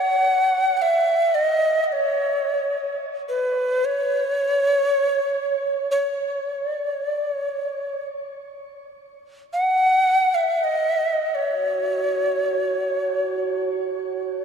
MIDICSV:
0, 0, Header, 1, 3, 480
1, 0, Start_track
1, 0, Tempo, 500000
1, 13868, End_track
2, 0, Start_track
2, 0, Title_t, "Native American-style wooden flute"
2, 0, Program_c, 0, 77
2, 0, Note_on_c, 0, 78, 92
2, 739, Note_off_c, 0, 78, 0
2, 739, Note_on_c, 0, 78, 75
2, 784, Note_on_c, 0, 76, 81
2, 793, Note_off_c, 0, 78, 0
2, 1291, Note_on_c, 0, 75, 77
2, 1305, Note_off_c, 0, 76, 0
2, 1762, Note_off_c, 0, 75, 0
2, 1762, Note_on_c, 0, 75, 52
2, 1846, Note_on_c, 0, 73, 79
2, 1860, Note_off_c, 0, 75, 0
2, 2899, Note_off_c, 0, 73, 0
2, 3157, Note_on_c, 0, 71, 65
2, 3693, Note_on_c, 0, 73, 86
2, 3707, Note_off_c, 0, 71, 0
2, 5664, Note_off_c, 0, 73, 0
2, 5673, Note_on_c, 0, 73, 64
2, 6393, Note_off_c, 0, 73, 0
2, 6393, Note_on_c, 0, 74, 64
2, 6595, Note_off_c, 0, 74, 0
2, 6595, Note_on_c, 0, 73, 64
2, 6806, Note_off_c, 0, 73, 0
2, 6806, Note_on_c, 0, 74, 64
2, 6998, Note_off_c, 0, 74, 0
2, 6998, Note_on_c, 0, 73, 64
2, 7711, Note_off_c, 0, 73, 0
2, 9150, Note_on_c, 0, 78, 94
2, 9930, Note_on_c, 0, 76, 77
2, 9944, Note_off_c, 0, 78, 0
2, 10213, Note_on_c, 0, 75, 82
2, 10228, Note_off_c, 0, 76, 0
2, 10893, Note_on_c, 0, 73, 72
2, 10907, Note_off_c, 0, 75, 0
2, 13868, Note_off_c, 0, 73, 0
2, 13868, End_track
3, 0, Start_track
3, 0, Title_t, "Glass harmonica"
3, 0, Program_c, 1, 92
3, 11003, Note_on_c, 1, 66, 53
3, 13868, Note_off_c, 1, 66, 0
3, 13868, End_track
0, 0, End_of_file